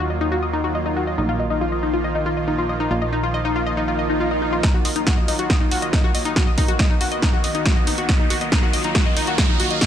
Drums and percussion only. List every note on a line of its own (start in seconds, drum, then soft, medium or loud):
4.63 kick loud
4.63 snare soft
4.63 closed hi-hat medium
4.85 open hi-hat loud
4.96 closed hi-hat medium
5.07 kick loud
5.07 snare soft
5.07 closed hi-hat medium
5.28 open hi-hat loud
5.39 closed hi-hat medium
5.50 kick loud
5.50 snare soft
5.50 closed hi-hat medium
5.71 open hi-hat loud
5.82 closed hi-hat medium
5.93 kick loud
5.93 snare soft
5.93 closed hi-hat medium
6.15 open hi-hat loud
6.25 closed hi-hat medium
6.36 kick loud
6.36 snare medium
6.36 closed hi-hat medium
6.58 kick medium
6.58 open hi-hat loud
6.68 closed hi-hat medium
6.79 kick loud
6.79 snare soft
6.79 closed hi-hat medium
7.01 open hi-hat loud
7.12 closed hi-hat medium
7.22 kick loud
7.22 snare soft
7.22 closed hi-hat medium
7.44 open hi-hat loud
7.55 closed hi-hat medium
7.66 kick loud
7.66 snare medium
7.66 closed hi-hat medium
7.87 open hi-hat loud
7.98 closed hi-hat medium
8.09 kick loud
8.09 snare medium
8.09 closed hi-hat medium
8.30 open hi-hat loud
8.41 closed hi-hat medium
8.52 kick loud
8.52 snare medium
8.52 closed hi-hat medium
8.73 open hi-hat loud
8.84 closed hi-hat medium
8.95 kick loud
8.95 snare medium
8.95 closed hi-hat medium
9.17 open hi-hat loud
9.27 closed hi-hat medium
9.38 kick loud
9.38 snare medium
9.38 closed hi-hat medium
9.60 open hi-hat loud
9.71 closed hi-hat medium
9.81 kick loud
9.81 snare medium
9.81 closed hi-hat medium